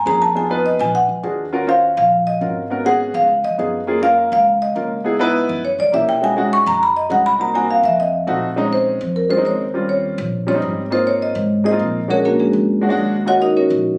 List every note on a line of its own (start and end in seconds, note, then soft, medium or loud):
0.05 0.74 F2 medium
0.05 0.26 A#3 medium
0.05 0.26 C#4 medium
0.05 0.27 F4 medium
0.05 0.27 G#4 medium
0.05 0.21 A#5 loud
0.22 0.36 A5 loud
0.34 0.45 B3 medium
0.34 0.45 D#4 medium
0.34 0.46 F4 medium
0.34 0.46 G#4 medium
0.34 0.50 G#5 medium
0.49 0.91 B3 medium
0.49 0.91 D#4 medium
0.49 0.91 F4 medium
0.49 0.92 B4 loud
0.49 0.65 B4 medium
0.66 0.80 D#5 medium
0.79 1.07 A#1 loud
0.79 0.94 G#5 loud
0.95 1.49 F#5 medium
1.09 1.22 D2 medium
1.23 1.92 D#2 medium
1.23 1.44 D4 medium
1.23 1.44 F4 medium
1.23 1.44 F#4 medium
1.23 1.45 G#4 medium
1.52 1.63 C#4 medium
1.52 1.63 F4 medium
1.52 1.63 F#4 medium
1.52 1.64 A#4 loud
1.67 2.08 C#4 medium
1.67 2.09 F4 medium
1.67 2.09 F#4 medium
1.67 2.09 C5 medium
1.67 1.96 F5 loud
1.97 2.38 A#1 loud
1.97 2.25 F5 loud
2.27 2.68 D#5 loud
2.41 3.09 G#1 medium
2.41 2.61 C#4 medium
2.41 2.62 F4 medium
2.41 2.62 F#4 medium
2.41 2.62 A#4 medium
2.70 2.81 B3 medium
2.70 2.81 C#4 medium
2.70 2.81 F#4 medium
2.70 2.81 A#4 medium
2.85 3.26 B3 medium
2.85 3.26 C#4 medium
2.85 3.26 F#4 medium
2.85 3.27 G#4 loud
2.85 3.13 F#5 loud
3.14 3.42 C#2 medium
3.14 3.42 F5 loud
3.44 3.57 F2 medium
3.44 3.85 D#5 medium
3.58 4.27 F#2 medium
3.58 3.79 B3 medium
3.58 3.79 D#4 medium
3.58 3.79 F4 medium
3.58 3.79 G#4 medium
3.87 3.98 A#3 medium
3.87 3.98 C#4 medium
3.87 3.98 F4 medium
3.87 3.98 G#4 medium
4.01 4.43 A#3 medium
4.01 4.43 C#4 medium
4.01 4.44 F4 medium
4.01 4.44 A#4 loud
4.01 4.30 F5 loud
4.32 4.73 C#2 loud
4.32 4.60 F5 loud
4.62 5.03 D#5 medium
4.75 5.44 C#2 medium
4.75 4.96 A#3 medium
4.75 4.96 C#4 medium
4.75 4.96 F4 medium
4.75 4.97 A#4 medium
5.04 5.15 B3 medium
5.04 5.15 D#4 medium
5.04 5.15 E4 medium
5.04 5.16 G#4 medium
5.19 5.61 B3 loud
5.19 5.61 D#4 loud
5.19 5.61 E4 loud
5.19 5.61 B4 loud
5.49 5.76 F#2 medium
5.65 5.78 C#5 medium
5.78 5.92 C#2 medium
5.78 5.93 D5 medium
5.92 6.61 B1 medium
5.92 6.13 A#3 medium
5.92 6.13 C#4 medium
5.92 6.14 E4 medium
5.92 6.14 G4 medium
5.92 6.08 E5 medium
6.09 6.22 G5 loud
6.22 6.32 G#3 medium
6.22 6.33 C#4 medium
6.22 6.33 D#4 medium
6.22 6.33 F#4 medium
6.22 6.50 G#5 medium
6.37 6.78 G#3 medium
6.37 6.78 C#4 medium
6.37 6.78 D#4 medium
6.37 6.79 F#4 loud
6.53 6.67 C#6 loud
6.66 7.07 F#2 loud
6.66 6.81 A#5 loud
6.83 6.96 B5 loud
6.97 7.10 D#5 medium
7.10 7.78 C2 medium
7.10 7.30 G#3 medium
7.10 7.31 C#4 medium
7.10 7.31 D#4 medium
7.10 7.31 F#4 medium
7.10 7.25 F#5 medium
7.26 7.40 B5 loud
7.39 7.49 A#3 medium
7.39 7.50 C4 medium
7.39 7.50 D#4 medium
7.39 7.50 F#4 medium
7.39 7.55 A#5 medium
7.54 7.95 A#3 medium
7.54 7.95 C4 medium
7.54 7.95 D#4 medium
7.54 7.96 F#4 loud
7.54 7.69 G#5 medium
7.71 7.84 F5 medium
7.83 8.24 F2 loud
7.83 7.99 E5 loud
8.00 8.08 D#5 medium
8.27 8.95 A#1 medium
8.27 8.48 A3 medium
8.27 8.48 C4 medium
8.27 8.48 D#4 medium
8.27 8.48 F#4 loud
8.56 8.98 G#3 medium
8.56 8.98 C4 medium
8.56 8.98 C#4 medium
8.56 8.98 D#4 loud
8.73 9.13 C5 medium
9.01 9.42 F2 medium
9.16 9.30 A#4 medium
9.29 9.35 G#3 medium
9.29 9.35 C4 medium
9.29 9.35 C#4 medium
9.29 9.36 F4 medium
9.29 9.45 C5 medium
9.37 9.63 G#3 medium
9.37 9.63 C4 medium
9.37 9.63 C#4 medium
9.37 9.64 D#4 medium
9.45 10.13 D#2 medium
9.45 9.87 C#5 medium
9.74 10.15 G3 medium
9.74 10.15 C4 medium
9.74 10.16 C#4 medium
9.74 10.16 F4 medium
9.89 10.03 C#5 medium
10.18 10.59 A#1 loud
10.47 10.52 G3 medium
10.47 10.53 C4 medium
10.47 10.53 C#4 medium
10.47 10.53 F4 medium
10.47 10.89 C#5 medium
10.54 10.80 G3 medium
10.54 10.81 C4 medium
10.54 10.81 C#4 medium
10.54 10.81 D#4 medium
10.62 11.30 G#1 medium
10.90 11.32 A#3 medium
10.90 11.32 C4 medium
10.90 11.33 D#4 medium
10.90 11.33 F4 medium
10.90 11.06 C5 medium
11.07 11.21 C#5 medium
11.22 11.63 D#5 medium
11.35 11.76 G#2 medium
11.64 11.70 A#3 medium
11.64 11.70 C4 medium
11.64 11.70 D#4 medium
11.64 11.70 G#4 medium
11.64 11.75 D#5 medium
11.71 11.97 A#3 medium
11.71 11.98 C4 medium
11.71 11.98 D#4 medium
11.71 11.98 F4 medium
11.79 12.47 A#1 medium
12.08 12.50 G#3 medium
12.08 12.50 C#4 medium
12.08 12.24 C#4 medium
12.08 12.50 D4 medium
12.08 12.50 F#4 medium
12.08 12.24 G#4 medium
12.08 12.24 A#4 medium
12.08 12.24 C#5 medium
12.25 12.39 A#3 medium
12.25 12.39 D4 medium
12.25 12.39 F#4 medium
12.25 12.39 A#4 medium
12.40 12.80 G#3 medium
12.40 12.80 C#4 medium
12.40 12.80 D4 medium
12.40 12.80 G#4 medium
12.53 12.94 F#2 loud
12.81 12.87 G#3 medium
12.81 12.87 C#4 medium
12.81 12.88 D4 medium
12.81 12.88 F#4 loud
12.89 13.15 G#3 loud
12.89 13.15 C#4 medium
12.89 13.15 D4 medium
12.89 13.16 F#4 loud
12.97 13.65 D#2 medium
13.25 13.67 A#3 medium
13.25 13.67 C#4 medium
13.25 13.67 F4 medium
13.25 13.68 F#4 medium
13.25 13.41 F#4 medium
13.25 13.41 C#5 medium
13.25 13.40 D#5 medium
13.25 13.41 F#5 loud
13.42 13.56 D#4 medium
13.42 13.56 F#4 medium
13.42 13.56 A#4 medium
13.42 13.56 D#5 medium
13.57 13.97 C#4 medium
13.57 13.97 F#4 medium
13.57 13.97 A#4 medium
13.57 13.97 C#5 medium
13.70 13.98 A#1 loud